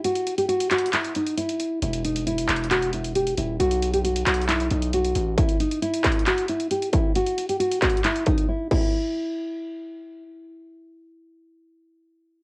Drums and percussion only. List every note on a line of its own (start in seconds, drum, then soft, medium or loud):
0.04 closed hi-hat medium
0.15 closed hi-hat medium
0.27 closed hi-hat medium
0.38 closed hi-hat medium
0.49 closed hi-hat medium
0.60 closed hi-hat medium
0.71 clap loud
0.71 closed hi-hat medium
0.71 open hi-hat medium
0.78 closed hi-hat medium
0.86 closed hi-hat medium
0.93 clap loud
0.93 closed hi-hat medium
1.05 closed hi-hat medium
1.15 closed hi-hat medium
1.27 closed hi-hat medium
1.38 closed hi-hat medium
1.49 closed hi-hat medium
1.60 closed hi-hat medium
1.82 closed hi-hat medium
1.93 closed hi-hat medium
2.05 closed hi-hat medium
2.16 closed hi-hat medium
2.27 closed hi-hat medium
2.38 closed hi-hat medium
2.49 clap medium
2.49 closed hi-hat medium
2.56 closed hi-hat medium
2.64 closed hi-hat soft
2.71 clap loud
2.71 closed hi-hat medium
2.82 closed hi-hat medium
2.93 closed hi-hat medium
3.04 closed hi-hat medium
3.15 closed hi-hat medium
3.27 closed hi-hat medium
3.37 closed hi-hat medium
3.60 closed hi-hat medium
3.71 closed hi-hat medium
3.82 closed hi-hat medium
3.94 closed hi-hat medium
4.05 closed hi-hat medium
4.16 closed hi-hat medium
4.26 clap medium
4.26 closed hi-hat medium
4.26 open hi-hat medium
4.34 closed hi-hat medium
4.42 closed hi-hat soft
4.49 clap loud
4.49 closed hi-hat medium
4.60 closed hi-hat medium
4.71 closed hi-hat medium
4.82 closed hi-hat medium
4.93 closed hi-hat medium
5.05 closed hi-hat medium
5.15 closed hi-hat medium
5.38 kick loud
5.38 closed hi-hat medium
5.49 closed hi-hat medium
5.60 closed hi-hat medium
5.71 closed hi-hat medium
5.82 closed hi-hat medium
5.94 closed hi-hat medium
6.04 kick loud
6.04 clap medium
6.04 closed hi-hat medium
6.12 closed hi-hat medium
6.19 closed hi-hat soft
6.26 clap loud
6.26 closed hi-hat medium
6.38 closed hi-hat medium
6.48 closed hi-hat medium
6.60 closed hi-hat medium
6.71 closed hi-hat medium
6.82 closed hi-hat medium
6.93 kick loud
6.93 closed hi-hat medium
7.15 closed hi-hat medium
7.27 closed hi-hat medium
7.38 closed hi-hat medium
7.49 closed hi-hat medium
7.60 closed hi-hat medium
7.72 closed hi-hat medium
7.82 kick loud
7.82 clap medium
7.82 closed hi-hat medium
7.82 open hi-hat medium
7.90 closed hi-hat medium
7.97 closed hi-hat medium
8.04 clap loud
8.04 closed hi-hat medium
8.16 closed hi-hat medium
8.26 kick loud
8.26 closed hi-hat medium
8.38 closed hi-hat medium
8.71 kick loud
8.71 crash medium